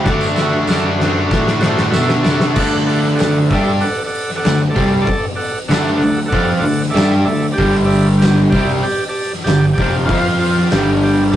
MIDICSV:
0, 0, Header, 1, 6, 480
1, 0, Start_track
1, 0, Tempo, 625000
1, 60, Time_signature, 4, 2, 24, 8
1, 8726, End_track
2, 0, Start_track
2, 0, Title_t, "Transistor combo organ"
2, 0, Program_c, 0, 18
2, 27, Note_on_c, 0, 66, 118
2, 30, Note_on_c, 0, 74, 120
2, 36, Note_on_c, 0, 69, 105
2, 206, Note_off_c, 0, 66, 0
2, 208, Note_off_c, 0, 74, 0
2, 211, Note_off_c, 0, 69, 0
2, 271, Note_on_c, 0, 76, 98
2, 274, Note_on_c, 0, 69, 84
2, 289, Note_on_c, 0, 66, 86
2, 448, Note_off_c, 0, 76, 0
2, 450, Note_off_c, 0, 69, 0
2, 457, Note_off_c, 0, 66, 0
2, 518, Note_on_c, 0, 74, 96
2, 522, Note_on_c, 0, 69, 77
2, 523, Note_on_c, 0, 66, 83
2, 691, Note_off_c, 0, 74, 0
2, 693, Note_off_c, 0, 69, 0
2, 694, Note_off_c, 0, 66, 0
2, 754, Note_on_c, 0, 66, 88
2, 756, Note_on_c, 0, 72, 97
2, 767, Note_on_c, 0, 69, 86
2, 929, Note_off_c, 0, 66, 0
2, 930, Note_off_c, 0, 72, 0
2, 936, Note_off_c, 0, 69, 0
2, 966, Note_on_c, 0, 74, 89
2, 967, Note_on_c, 0, 69, 74
2, 976, Note_on_c, 0, 66, 84
2, 1155, Note_off_c, 0, 74, 0
2, 1156, Note_off_c, 0, 69, 0
2, 1160, Note_off_c, 0, 66, 0
2, 1227, Note_on_c, 0, 66, 102
2, 1233, Note_on_c, 0, 69, 93
2, 1237, Note_on_c, 0, 72, 117
2, 1406, Note_off_c, 0, 66, 0
2, 1409, Note_off_c, 0, 69, 0
2, 1411, Note_off_c, 0, 72, 0
2, 1460, Note_on_c, 0, 69, 98
2, 1462, Note_on_c, 0, 66, 108
2, 1462, Note_on_c, 0, 76, 122
2, 1642, Note_off_c, 0, 69, 0
2, 1643, Note_off_c, 0, 66, 0
2, 1643, Note_off_c, 0, 76, 0
2, 1712, Note_on_c, 0, 66, 87
2, 1712, Note_on_c, 0, 69, 78
2, 1714, Note_on_c, 0, 74, 90
2, 1888, Note_off_c, 0, 66, 0
2, 1888, Note_off_c, 0, 69, 0
2, 1889, Note_off_c, 0, 74, 0
2, 1952, Note_on_c, 0, 69, 110
2, 1954, Note_on_c, 0, 74, 102
2, 1959, Note_on_c, 0, 78, 122
2, 2128, Note_off_c, 0, 69, 0
2, 2129, Note_off_c, 0, 74, 0
2, 2131, Note_off_c, 0, 78, 0
2, 2201, Note_on_c, 0, 78, 94
2, 2202, Note_on_c, 0, 74, 78
2, 2205, Note_on_c, 0, 69, 88
2, 2372, Note_off_c, 0, 78, 0
2, 2373, Note_off_c, 0, 74, 0
2, 2374, Note_off_c, 0, 69, 0
2, 2414, Note_on_c, 0, 69, 84
2, 2414, Note_on_c, 0, 74, 78
2, 2421, Note_on_c, 0, 78, 95
2, 2599, Note_off_c, 0, 69, 0
2, 2599, Note_off_c, 0, 74, 0
2, 2602, Note_off_c, 0, 78, 0
2, 2683, Note_on_c, 0, 76, 97
2, 2702, Note_on_c, 0, 74, 76
2, 2703, Note_on_c, 0, 69, 87
2, 2853, Note_off_c, 0, 76, 0
2, 2863, Note_off_c, 0, 69, 0
2, 2863, Note_off_c, 0, 74, 0
2, 2923, Note_on_c, 0, 74, 99
2, 2925, Note_on_c, 0, 69, 110
2, 2926, Note_on_c, 0, 78, 121
2, 3093, Note_off_c, 0, 74, 0
2, 3094, Note_off_c, 0, 69, 0
2, 3095, Note_off_c, 0, 78, 0
2, 3106, Note_on_c, 0, 69, 87
2, 3121, Note_on_c, 0, 74, 77
2, 3125, Note_on_c, 0, 78, 93
2, 3304, Note_off_c, 0, 69, 0
2, 3312, Note_off_c, 0, 74, 0
2, 3314, Note_off_c, 0, 78, 0
2, 3345, Note_on_c, 0, 69, 118
2, 3351, Note_on_c, 0, 78, 119
2, 3355, Note_on_c, 0, 74, 98
2, 3544, Note_off_c, 0, 69, 0
2, 3547, Note_off_c, 0, 78, 0
2, 3549, Note_off_c, 0, 74, 0
2, 3608, Note_on_c, 0, 69, 85
2, 3617, Note_on_c, 0, 74, 77
2, 3618, Note_on_c, 0, 81, 97
2, 3796, Note_off_c, 0, 69, 0
2, 3800, Note_off_c, 0, 74, 0
2, 3801, Note_off_c, 0, 81, 0
2, 3850, Note_on_c, 0, 74, 107
2, 3851, Note_on_c, 0, 81, 122
2, 3862, Note_on_c, 0, 69, 116
2, 4037, Note_off_c, 0, 74, 0
2, 4037, Note_off_c, 0, 81, 0
2, 4043, Note_off_c, 0, 69, 0
2, 4113, Note_on_c, 0, 74, 83
2, 4119, Note_on_c, 0, 78, 95
2, 4120, Note_on_c, 0, 69, 87
2, 4288, Note_off_c, 0, 74, 0
2, 4291, Note_off_c, 0, 78, 0
2, 4292, Note_off_c, 0, 69, 0
2, 4363, Note_on_c, 0, 69, 81
2, 4363, Note_on_c, 0, 78, 95
2, 4366, Note_on_c, 0, 74, 79
2, 4533, Note_off_c, 0, 69, 0
2, 4533, Note_off_c, 0, 78, 0
2, 4535, Note_off_c, 0, 74, 0
2, 4573, Note_on_c, 0, 74, 82
2, 4579, Note_on_c, 0, 69, 94
2, 4586, Note_on_c, 0, 78, 103
2, 4758, Note_off_c, 0, 74, 0
2, 4761, Note_off_c, 0, 69, 0
2, 4765, Note_off_c, 0, 78, 0
2, 4807, Note_on_c, 0, 69, 107
2, 4823, Note_on_c, 0, 78, 126
2, 4831, Note_on_c, 0, 74, 99
2, 4995, Note_off_c, 0, 69, 0
2, 5003, Note_off_c, 0, 78, 0
2, 5007, Note_off_c, 0, 74, 0
2, 5059, Note_on_c, 0, 69, 90
2, 5060, Note_on_c, 0, 74, 81
2, 5068, Note_on_c, 0, 78, 95
2, 5242, Note_off_c, 0, 69, 0
2, 5242, Note_off_c, 0, 74, 0
2, 5246, Note_off_c, 0, 78, 0
2, 5300, Note_on_c, 0, 76, 126
2, 5304, Note_on_c, 0, 74, 105
2, 5310, Note_on_c, 0, 69, 107
2, 5482, Note_off_c, 0, 76, 0
2, 5484, Note_off_c, 0, 74, 0
2, 5487, Note_off_c, 0, 69, 0
2, 5565, Note_on_c, 0, 76, 96
2, 5567, Note_on_c, 0, 74, 81
2, 5573, Note_on_c, 0, 69, 91
2, 5735, Note_off_c, 0, 74, 0
2, 5735, Note_off_c, 0, 76, 0
2, 5739, Note_off_c, 0, 69, 0
2, 5776, Note_on_c, 0, 74, 101
2, 5786, Note_on_c, 0, 79, 127
2, 5787, Note_on_c, 0, 67, 118
2, 5960, Note_off_c, 0, 74, 0
2, 5965, Note_off_c, 0, 79, 0
2, 5966, Note_off_c, 0, 67, 0
2, 6022, Note_on_c, 0, 67, 88
2, 6032, Note_on_c, 0, 74, 86
2, 6033, Note_on_c, 0, 76, 101
2, 6203, Note_off_c, 0, 67, 0
2, 6208, Note_off_c, 0, 74, 0
2, 6208, Note_off_c, 0, 76, 0
2, 6283, Note_on_c, 0, 67, 86
2, 6300, Note_on_c, 0, 79, 100
2, 6306, Note_on_c, 0, 74, 79
2, 6454, Note_off_c, 0, 67, 0
2, 6462, Note_off_c, 0, 79, 0
2, 6465, Note_off_c, 0, 74, 0
2, 6528, Note_on_c, 0, 79, 104
2, 6534, Note_on_c, 0, 67, 91
2, 6534, Note_on_c, 0, 74, 84
2, 6696, Note_off_c, 0, 79, 0
2, 6699, Note_off_c, 0, 67, 0
2, 6699, Note_off_c, 0, 74, 0
2, 6783, Note_on_c, 0, 67, 104
2, 6783, Note_on_c, 0, 79, 127
2, 6787, Note_on_c, 0, 74, 100
2, 6943, Note_off_c, 0, 67, 0
2, 6943, Note_off_c, 0, 79, 0
2, 6946, Note_off_c, 0, 74, 0
2, 6975, Note_on_c, 0, 81, 91
2, 6981, Note_on_c, 0, 67, 83
2, 6983, Note_on_c, 0, 74, 80
2, 7160, Note_off_c, 0, 81, 0
2, 7163, Note_off_c, 0, 67, 0
2, 7164, Note_off_c, 0, 74, 0
2, 7251, Note_on_c, 0, 67, 112
2, 7251, Note_on_c, 0, 79, 127
2, 7252, Note_on_c, 0, 74, 102
2, 7418, Note_off_c, 0, 67, 0
2, 7418, Note_off_c, 0, 74, 0
2, 7418, Note_off_c, 0, 79, 0
2, 7474, Note_on_c, 0, 67, 86
2, 7480, Note_on_c, 0, 79, 94
2, 7487, Note_on_c, 0, 74, 80
2, 7650, Note_off_c, 0, 67, 0
2, 7653, Note_off_c, 0, 79, 0
2, 7656, Note_off_c, 0, 74, 0
2, 7716, Note_on_c, 0, 72, 108
2, 7722, Note_on_c, 0, 77, 127
2, 7725, Note_on_c, 0, 65, 118
2, 7891, Note_off_c, 0, 72, 0
2, 7894, Note_off_c, 0, 77, 0
2, 7895, Note_off_c, 0, 65, 0
2, 7977, Note_on_c, 0, 65, 88
2, 7980, Note_on_c, 0, 72, 81
2, 7987, Note_on_c, 0, 77, 95
2, 8142, Note_off_c, 0, 65, 0
2, 8143, Note_off_c, 0, 72, 0
2, 8147, Note_off_c, 0, 77, 0
2, 8228, Note_on_c, 0, 67, 86
2, 8230, Note_on_c, 0, 79, 94
2, 8240, Note_on_c, 0, 74, 77
2, 8387, Note_off_c, 0, 67, 0
2, 8388, Note_off_c, 0, 79, 0
2, 8393, Note_off_c, 0, 74, 0
2, 8472, Note_on_c, 0, 67, 89
2, 8478, Note_on_c, 0, 79, 95
2, 8480, Note_on_c, 0, 74, 78
2, 8630, Note_off_c, 0, 67, 0
2, 8633, Note_off_c, 0, 79, 0
2, 8634, Note_off_c, 0, 74, 0
2, 8687, Note_on_c, 0, 74, 100
2, 8695, Note_on_c, 0, 67, 106
2, 8700, Note_on_c, 0, 81, 120
2, 8726, Note_off_c, 0, 67, 0
2, 8726, Note_off_c, 0, 74, 0
2, 8726, Note_off_c, 0, 81, 0
2, 8726, End_track
3, 0, Start_track
3, 0, Title_t, "Overdriven electric guitar"
3, 0, Program_c, 1, 29
3, 71, Note_on_c, 1, 50, 104
3, 79, Note_on_c, 1, 57, 110
3, 81, Note_on_c, 1, 62, 114
3, 91, Note_on_c, 1, 66, 103
3, 297, Note_off_c, 1, 50, 0
3, 306, Note_off_c, 1, 57, 0
3, 306, Note_on_c, 1, 50, 87
3, 313, Note_off_c, 1, 62, 0
3, 315, Note_off_c, 1, 66, 0
3, 315, Note_on_c, 1, 57, 85
3, 322, Note_on_c, 1, 62, 87
3, 324, Note_on_c, 1, 66, 100
3, 527, Note_off_c, 1, 50, 0
3, 536, Note_on_c, 1, 50, 90
3, 543, Note_off_c, 1, 57, 0
3, 544, Note_off_c, 1, 62, 0
3, 552, Note_on_c, 1, 57, 85
3, 553, Note_on_c, 1, 62, 89
3, 555, Note_off_c, 1, 66, 0
3, 564, Note_on_c, 1, 66, 106
3, 774, Note_off_c, 1, 50, 0
3, 783, Note_on_c, 1, 50, 91
3, 786, Note_off_c, 1, 57, 0
3, 787, Note_off_c, 1, 62, 0
3, 795, Note_off_c, 1, 66, 0
3, 795, Note_on_c, 1, 57, 104
3, 796, Note_on_c, 1, 62, 106
3, 804, Note_on_c, 1, 66, 106
3, 1004, Note_off_c, 1, 50, 0
3, 1013, Note_on_c, 1, 50, 82
3, 1014, Note_off_c, 1, 57, 0
3, 1022, Note_off_c, 1, 62, 0
3, 1023, Note_on_c, 1, 57, 89
3, 1030, Note_off_c, 1, 66, 0
3, 1031, Note_on_c, 1, 62, 103
3, 1039, Note_on_c, 1, 66, 91
3, 1252, Note_off_c, 1, 50, 0
3, 1260, Note_off_c, 1, 57, 0
3, 1262, Note_on_c, 1, 50, 104
3, 1270, Note_off_c, 1, 62, 0
3, 1270, Note_on_c, 1, 57, 105
3, 1276, Note_off_c, 1, 66, 0
3, 1279, Note_on_c, 1, 62, 103
3, 1285, Note_on_c, 1, 66, 113
3, 1514, Note_off_c, 1, 50, 0
3, 1523, Note_on_c, 1, 50, 88
3, 1524, Note_off_c, 1, 57, 0
3, 1531, Note_off_c, 1, 66, 0
3, 1532, Note_off_c, 1, 62, 0
3, 1533, Note_on_c, 1, 57, 85
3, 1540, Note_on_c, 1, 62, 98
3, 1541, Note_on_c, 1, 66, 90
3, 1729, Note_off_c, 1, 50, 0
3, 1735, Note_off_c, 1, 57, 0
3, 1738, Note_on_c, 1, 50, 95
3, 1744, Note_on_c, 1, 57, 87
3, 1745, Note_off_c, 1, 62, 0
3, 1752, Note_off_c, 1, 66, 0
3, 1754, Note_on_c, 1, 62, 92
3, 1761, Note_on_c, 1, 66, 98
3, 1963, Note_off_c, 1, 50, 0
3, 1966, Note_off_c, 1, 57, 0
3, 1971, Note_off_c, 1, 62, 0
3, 1975, Note_off_c, 1, 66, 0
3, 1986, Note_on_c, 1, 50, 110
3, 1989, Note_on_c, 1, 57, 107
3, 2000, Note_on_c, 1, 62, 106
3, 2694, Note_off_c, 1, 50, 0
3, 2695, Note_off_c, 1, 57, 0
3, 2701, Note_off_c, 1, 62, 0
3, 2703, Note_on_c, 1, 55, 91
3, 2712, Note_on_c, 1, 62, 105
3, 2720, Note_on_c, 1, 67, 104
3, 2933, Note_off_c, 1, 55, 0
3, 2937, Note_off_c, 1, 62, 0
3, 2941, Note_off_c, 1, 67, 0
3, 3428, Note_on_c, 1, 50, 69
3, 3438, Note_on_c, 1, 57, 73
3, 3615, Note_off_c, 1, 50, 0
3, 3619, Note_off_c, 1, 57, 0
3, 3648, Note_on_c, 1, 48, 96
3, 3658, Note_on_c, 1, 55, 101
3, 3665, Note_on_c, 1, 60, 106
3, 3885, Note_off_c, 1, 48, 0
3, 3890, Note_off_c, 1, 55, 0
3, 3894, Note_off_c, 1, 60, 0
3, 4370, Note_on_c, 1, 50, 94
3, 4385, Note_on_c, 1, 57, 106
3, 4389, Note_on_c, 1, 62, 108
3, 4606, Note_off_c, 1, 50, 0
3, 4614, Note_off_c, 1, 57, 0
3, 4616, Note_off_c, 1, 62, 0
3, 4622, Note_on_c, 1, 57, 71
3, 4625, Note_on_c, 1, 50, 66
3, 4811, Note_off_c, 1, 57, 0
3, 4813, Note_off_c, 1, 50, 0
3, 4855, Note_on_c, 1, 53, 98
3, 4863, Note_on_c, 1, 60, 109
3, 4867, Note_on_c, 1, 65, 113
3, 5089, Note_off_c, 1, 53, 0
3, 5093, Note_off_c, 1, 60, 0
3, 5095, Note_off_c, 1, 65, 0
3, 5097, Note_on_c, 1, 50, 73
3, 5100, Note_on_c, 1, 57, 73
3, 5289, Note_off_c, 1, 50, 0
3, 5291, Note_off_c, 1, 57, 0
3, 5331, Note_on_c, 1, 55, 97
3, 5340, Note_on_c, 1, 62, 98
3, 5344, Note_on_c, 1, 67, 104
3, 5567, Note_off_c, 1, 55, 0
3, 5571, Note_off_c, 1, 62, 0
3, 5573, Note_off_c, 1, 67, 0
3, 5589, Note_on_c, 1, 50, 66
3, 5591, Note_on_c, 1, 57, 74
3, 5775, Note_off_c, 1, 50, 0
3, 5776, Note_off_c, 1, 57, 0
3, 5821, Note_on_c, 1, 43, 104
3, 5832, Note_on_c, 1, 50, 110
3, 5837, Note_on_c, 1, 55, 111
3, 6532, Note_off_c, 1, 43, 0
3, 6538, Note_off_c, 1, 50, 0
3, 6540, Note_off_c, 1, 55, 0
3, 6552, Note_on_c, 1, 48, 89
3, 6555, Note_on_c, 1, 55, 97
3, 6564, Note_on_c, 1, 60, 104
3, 6778, Note_off_c, 1, 48, 0
3, 6779, Note_off_c, 1, 55, 0
3, 6783, Note_off_c, 1, 60, 0
3, 7284, Note_on_c, 1, 43, 67
3, 7286, Note_on_c, 1, 50, 77
3, 7463, Note_off_c, 1, 43, 0
3, 7464, Note_off_c, 1, 50, 0
3, 7517, Note_on_c, 1, 41, 95
3, 7527, Note_on_c, 1, 48, 96
3, 7533, Note_on_c, 1, 53, 108
3, 7741, Note_off_c, 1, 41, 0
3, 7765, Note_off_c, 1, 48, 0
3, 7765, Note_off_c, 1, 53, 0
3, 7765, Note_on_c, 1, 53, 102
3, 7772, Note_on_c, 1, 60, 97
3, 7781, Note_on_c, 1, 65, 114
3, 8225, Note_off_c, 1, 53, 0
3, 8229, Note_off_c, 1, 60, 0
3, 8233, Note_off_c, 1, 65, 0
3, 8233, Note_on_c, 1, 43, 94
3, 8235, Note_on_c, 1, 50, 95
3, 8248, Note_on_c, 1, 55, 107
3, 8700, Note_off_c, 1, 43, 0
3, 8701, Note_off_c, 1, 50, 0
3, 8708, Note_off_c, 1, 55, 0
3, 8726, End_track
4, 0, Start_track
4, 0, Title_t, "Fingered electric bass"
4, 0, Program_c, 2, 33
4, 44, Note_on_c, 2, 38, 102
4, 513, Note_off_c, 2, 38, 0
4, 531, Note_on_c, 2, 42, 91
4, 996, Note_off_c, 2, 42, 0
4, 1015, Note_on_c, 2, 45, 96
4, 1478, Note_off_c, 2, 45, 0
4, 1508, Note_on_c, 2, 47, 83
4, 1734, Note_off_c, 2, 47, 0
4, 1743, Note_on_c, 2, 48, 87
4, 1964, Note_off_c, 2, 48, 0
4, 1969, Note_on_c, 2, 38, 103
4, 2662, Note_off_c, 2, 38, 0
4, 2701, Note_on_c, 2, 43, 93
4, 2922, Note_off_c, 2, 43, 0
4, 3421, Note_on_c, 2, 38, 77
4, 3642, Note_off_c, 2, 38, 0
4, 3651, Note_on_c, 2, 36, 102
4, 3877, Note_off_c, 2, 36, 0
4, 4370, Note_on_c, 2, 38, 99
4, 4596, Note_off_c, 2, 38, 0
4, 4619, Note_on_c, 2, 38, 86
4, 4842, Note_off_c, 2, 38, 0
4, 4856, Note_on_c, 2, 41, 99
4, 5080, Note_off_c, 2, 41, 0
4, 5084, Note_on_c, 2, 38, 80
4, 5313, Note_off_c, 2, 38, 0
4, 5334, Note_on_c, 2, 43, 91
4, 5559, Note_off_c, 2, 43, 0
4, 5575, Note_on_c, 2, 38, 80
4, 5799, Note_off_c, 2, 38, 0
4, 5826, Note_on_c, 2, 31, 105
4, 6511, Note_off_c, 2, 31, 0
4, 6548, Note_on_c, 2, 36, 97
4, 6766, Note_off_c, 2, 36, 0
4, 7261, Note_on_c, 2, 31, 79
4, 7483, Note_off_c, 2, 31, 0
4, 7510, Note_on_c, 2, 29, 95
4, 7728, Note_off_c, 2, 29, 0
4, 7747, Note_on_c, 2, 41, 102
4, 8193, Note_off_c, 2, 41, 0
4, 8237, Note_on_c, 2, 31, 96
4, 8678, Note_off_c, 2, 31, 0
4, 8726, End_track
5, 0, Start_track
5, 0, Title_t, "Muted overdriven electric guitar strokes"
5, 3901, Note_on_c, 9, 29, 62
5, 3977, Note_off_c, 9, 29, 0
5, 8726, End_track
6, 0, Start_track
6, 0, Title_t, "Drums"
6, 39, Note_on_c, 9, 38, 65
6, 45, Note_on_c, 9, 36, 112
6, 116, Note_off_c, 9, 38, 0
6, 122, Note_off_c, 9, 36, 0
6, 160, Note_on_c, 9, 54, 85
6, 237, Note_off_c, 9, 54, 0
6, 278, Note_on_c, 9, 54, 85
6, 280, Note_on_c, 9, 38, 75
6, 355, Note_off_c, 9, 54, 0
6, 357, Note_off_c, 9, 38, 0
6, 394, Note_on_c, 9, 54, 31
6, 471, Note_off_c, 9, 54, 0
6, 516, Note_on_c, 9, 54, 103
6, 531, Note_on_c, 9, 38, 80
6, 593, Note_off_c, 9, 54, 0
6, 608, Note_off_c, 9, 38, 0
6, 643, Note_on_c, 9, 54, 31
6, 720, Note_off_c, 9, 54, 0
6, 770, Note_on_c, 9, 38, 79
6, 847, Note_off_c, 9, 38, 0
6, 1008, Note_on_c, 9, 36, 113
6, 1013, Note_on_c, 9, 38, 87
6, 1084, Note_off_c, 9, 36, 0
6, 1090, Note_off_c, 9, 38, 0
6, 1129, Note_on_c, 9, 38, 78
6, 1206, Note_off_c, 9, 38, 0
6, 1233, Note_on_c, 9, 54, 83
6, 1242, Note_on_c, 9, 38, 106
6, 1310, Note_off_c, 9, 54, 0
6, 1319, Note_off_c, 9, 38, 0
6, 1363, Note_on_c, 9, 38, 86
6, 1440, Note_off_c, 9, 38, 0
6, 1477, Note_on_c, 9, 38, 103
6, 1485, Note_on_c, 9, 54, 104
6, 1554, Note_off_c, 9, 38, 0
6, 1562, Note_off_c, 9, 54, 0
6, 1603, Note_on_c, 9, 38, 92
6, 1612, Note_on_c, 9, 54, 30
6, 1680, Note_off_c, 9, 38, 0
6, 1689, Note_off_c, 9, 54, 0
6, 1723, Note_on_c, 9, 54, 78
6, 1726, Note_on_c, 9, 38, 107
6, 1799, Note_off_c, 9, 54, 0
6, 1803, Note_off_c, 9, 38, 0
6, 1845, Note_on_c, 9, 38, 98
6, 1922, Note_off_c, 9, 38, 0
6, 1964, Note_on_c, 9, 49, 116
6, 1969, Note_on_c, 9, 36, 108
6, 2041, Note_off_c, 9, 49, 0
6, 2046, Note_off_c, 9, 36, 0
6, 2210, Note_on_c, 9, 46, 62
6, 2287, Note_off_c, 9, 46, 0
6, 2343, Note_on_c, 9, 38, 35
6, 2420, Note_off_c, 9, 38, 0
6, 2449, Note_on_c, 9, 54, 97
6, 2454, Note_on_c, 9, 46, 88
6, 2460, Note_on_c, 9, 38, 114
6, 2526, Note_off_c, 9, 54, 0
6, 2531, Note_off_c, 9, 46, 0
6, 2537, Note_off_c, 9, 38, 0
6, 2694, Note_on_c, 9, 36, 106
6, 2696, Note_on_c, 9, 46, 60
6, 2770, Note_off_c, 9, 36, 0
6, 2773, Note_off_c, 9, 46, 0
6, 2922, Note_on_c, 9, 46, 86
6, 2999, Note_off_c, 9, 46, 0
6, 3179, Note_on_c, 9, 46, 69
6, 3256, Note_off_c, 9, 46, 0
6, 3302, Note_on_c, 9, 38, 35
6, 3379, Note_off_c, 9, 38, 0
6, 3413, Note_on_c, 9, 46, 81
6, 3419, Note_on_c, 9, 38, 120
6, 3428, Note_on_c, 9, 54, 90
6, 3489, Note_off_c, 9, 46, 0
6, 3496, Note_off_c, 9, 38, 0
6, 3504, Note_off_c, 9, 54, 0
6, 3656, Note_on_c, 9, 36, 104
6, 3661, Note_on_c, 9, 46, 57
6, 3733, Note_off_c, 9, 36, 0
6, 3738, Note_off_c, 9, 46, 0
6, 3896, Note_on_c, 9, 36, 105
6, 3897, Note_on_c, 9, 46, 79
6, 3972, Note_off_c, 9, 36, 0
6, 3973, Note_off_c, 9, 46, 0
6, 4140, Note_on_c, 9, 46, 64
6, 4217, Note_off_c, 9, 46, 0
6, 4380, Note_on_c, 9, 46, 85
6, 4386, Note_on_c, 9, 38, 117
6, 4390, Note_on_c, 9, 54, 90
6, 4457, Note_off_c, 9, 46, 0
6, 4463, Note_off_c, 9, 38, 0
6, 4466, Note_off_c, 9, 54, 0
6, 4624, Note_on_c, 9, 46, 63
6, 4701, Note_off_c, 9, 46, 0
6, 4858, Note_on_c, 9, 36, 111
6, 4862, Note_on_c, 9, 46, 85
6, 4934, Note_off_c, 9, 36, 0
6, 4939, Note_off_c, 9, 46, 0
6, 5105, Note_on_c, 9, 46, 69
6, 5182, Note_off_c, 9, 46, 0
6, 5240, Note_on_c, 9, 38, 33
6, 5317, Note_off_c, 9, 38, 0
6, 5348, Note_on_c, 9, 46, 94
6, 5350, Note_on_c, 9, 54, 95
6, 5354, Note_on_c, 9, 38, 120
6, 5425, Note_off_c, 9, 46, 0
6, 5427, Note_off_c, 9, 54, 0
6, 5431, Note_off_c, 9, 38, 0
6, 5590, Note_on_c, 9, 46, 64
6, 5667, Note_off_c, 9, 46, 0
6, 5824, Note_on_c, 9, 36, 104
6, 5832, Note_on_c, 9, 46, 90
6, 5901, Note_off_c, 9, 36, 0
6, 5909, Note_off_c, 9, 46, 0
6, 6069, Note_on_c, 9, 46, 66
6, 6146, Note_off_c, 9, 46, 0
6, 6310, Note_on_c, 9, 46, 91
6, 6316, Note_on_c, 9, 38, 113
6, 6319, Note_on_c, 9, 54, 90
6, 6387, Note_off_c, 9, 46, 0
6, 6393, Note_off_c, 9, 38, 0
6, 6396, Note_off_c, 9, 54, 0
6, 6547, Note_on_c, 9, 36, 106
6, 6556, Note_on_c, 9, 46, 67
6, 6624, Note_off_c, 9, 36, 0
6, 6633, Note_off_c, 9, 46, 0
6, 6791, Note_on_c, 9, 46, 85
6, 6868, Note_off_c, 9, 46, 0
6, 7031, Note_on_c, 9, 46, 66
6, 7107, Note_off_c, 9, 46, 0
6, 7167, Note_on_c, 9, 38, 35
6, 7244, Note_off_c, 9, 38, 0
6, 7269, Note_on_c, 9, 46, 84
6, 7273, Note_on_c, 9, 54, 80
6, 7275, Note_on_c, 9, 38, 121
6, 7345, Note_off_c, 9, 46, 0
6, 7350, Note_off_c, 9, 54, 0
6, 7351, Note_off_c, 9, 38, 0
6, 7510, Note_on_c, 9, 36, 101
6, 7516, Note_on_c, 9, 46, 59
6, 7587, Note_off_c, 9, 36, 0
6, 7592, Note_off_c, 9, 46, 0
6, 7744, Note_on_c, 9, 46, 81
6, 7750, Note_on_c, 9, 36, 112
6, 7821, Note_off_c, 9, 46, 0
6, 7826, Note_off_c, 9, 36, 0
6, 7998, Note_on_c, 9, 46, 62
6, 8075, Note_off_c, 9, 46, 0
6, 8120, Note_on_c, 9, 38, 37
6, 8197, Note_off_c, 9, 38, 0
6, 8223, Note_on_c, 9, 54, 74
6, 8227, Note_on_c, 9, 46, 85
6, 8233, Note_on_c, 9, 38, 116
6, 8300, Note_off_c, 9, 54, 0
6, 8304, Note_off_c, 9, 46, 0
6, 8310, Note_off_c, 9, 38, 0
6, 8473, Note_on_c, 9, 46, 60
6, 8550, Note_off_c, 9, 46, 0
6, 8726, End_track
0, 0, End_of_file